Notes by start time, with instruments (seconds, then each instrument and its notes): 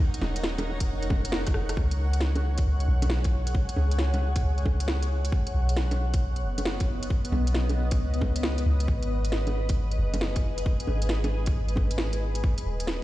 Already playing: 808-style bass D#2, ambient pad D#4 A#4 C#5 F#5, synth texture F#5
0.14 closed hi-hat
0.21 808-style bass D#1, snare, low bongo
0.36 closed hi-hat
0.43 snare
0.58 closed hi-hat, low bongo
0.80 kick, closed hi-hat
0.88 808-style bass F1
1.03 closed hi-hat
1.10 kick, low bongo
1.25 closed hi-hat
1.32 snare
1.47 kick, cross-stick, closed hi-hat
1.54 808-style bass F1, cross-stick
1.69 cross-stick, closed hi-hat
1.77 808-style bass C#2, ambient pad G#4, kick
1.91 closed hi-hat
2.13 closed hi-hat
2.21 snare
2.36 closed hi-hat, low bongo
2.58 kick, closed hi-hat
2.66 808-style bass C#2
2.80 closed hi-hat
2.88 808-style bass B1
3.02 closed hi-hat, low bongo
3.10 snare
3.24 kick, closed hi-hat
3.47 closed hi-hat
3.55 kick
3.69 closed hi-hat
3.76 808-style bass C#2, low bongo
3.91 closed hi-hat
3.99 snare
4.14 closed hi-hat, low bongo
4.36 kick, closed hi-hat
4.43 808-style bass C#2
4.58 closed hi-hat
4.65 kick, low bongo
4.80 closed hi-hat
4.88 snare
5.03 closed hi-hat
5.25 closed hi-hat
5.31 ambient pad B3, kick
5.47 ambient pad B4, closed hi-hat
5.53 808-style bass B1, ambient pad D#5
5.69 closed hi-hat
5.77 snare
5.91 closed hi-hat, low bongo
6.14 kick, closed hi-hat
6.36 closed hi-hat
6.43 808-style bass F#1
6.58 closed hi-hat, low bongo
6.65 snare
6.80 kick, closed hi-hat
7.03 closed hi-hat
7.10 kick
7.25 closed hi-hat
7.32 808-style bass B1, low bongo
7.47 closed hi-hat
7.54 snare
7.69 closed hi-hat, low bongo
7.91 kick, closed hi-hat
7.99 808-style bass C#2
8.14 closed hi-hat
8.21 kick, low bongo
8.36 closed hi-hat
8.43 snare
8.58 closed hi-hat
8.66 808-style bass C#2
8.80 closed hi-hat
8.88 808-style bass G#1, ambient pad G#4, kick
9.03 closed hi-hat
9.25 closed hi-hat
9.32 snare
9.47 closed hi-hat, low bongo
9.69 kick, closed hi-hat
9.77 808-style bass G#1
9.91 closed hi-hat
9.99 808-style bass F#1
10.14 closed hi-hat, low bongo
10.21 snare
10.36 kick, closed hi-hat
10.58 closed hi-hat
10.66 kick
10.80 closed hi-hat
10.87 808-style bass G#1, low bongo
11.02 closed hi-hat
11.09 snare
11.24 closed hi-hat, low bongo
11.46 kick, closed hi-hat
11.55 808-style bass G#1
11.69 closed hi-hat
11.76 kick, low bongo
11.91 closed hi-hat
11.98 snare
12.13 closed hi-hat
12.35 closed hi-hat
12.43 ambient pad D#4, kick
12.58 closed hi-hat
12.63 808-style bass D#1, ambient pad A#4 F5
12.80 closed hi-hat
12.87 snare
12.94 ambient pad C#5